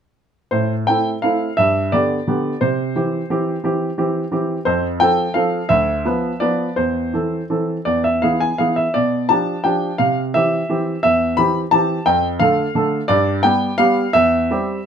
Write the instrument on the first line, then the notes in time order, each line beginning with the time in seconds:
grand piano
0.51 A2 C5
0.87 A3 C4 E4 G5
1.22 A3 C4 E4 F5
1.57 G2 E5
1.92 D3 B3 G4 D5
2.27 D3 B3 G4
2.61 C3 C5
2.96 E3 C4 G4
3.30 E3 C4 G4
3.64 E3 C4 G4
3.98 E3 C4 G4
4.32 E3 C4 G4
4.65 F2 C5
5.00 F3 C4 A4 G5
5.34 F3 C4 A4 F5
5.69 D2 E5
6.05 F3 B3 B4
6.40 F3 B3 B4 D5
6.76 E2 C5
7.14 E3 C4 A4
7.50 E3 C4 A4
7.85 E2 D5
8.04 E5
8.22 E3 B3 G#4 F5
8.40 G#5
8.58 E3 B3 G#4 F5
8.76 E5
8.94 B2 D5
9.29 F3 D4 G4 A5
9.64 F3 D4 G4 G5
9.98 C3 F5
10.34 E3 C4 G4 E5
10.69 E3 C4 G4
11.03 E2 E5
11.37 E3 C4 G4 B5
11.71 E3 C4 G4 A5
12.06 F2 G5
12.40 D3 A3 A4 F5
12.75 D3 A3 A4
13.08 G2 D5
13.43 G3 B3 G4 G5
13.78 G3 B3 G4 F5
14.13 E2 E5
14.51 G3 C4 G4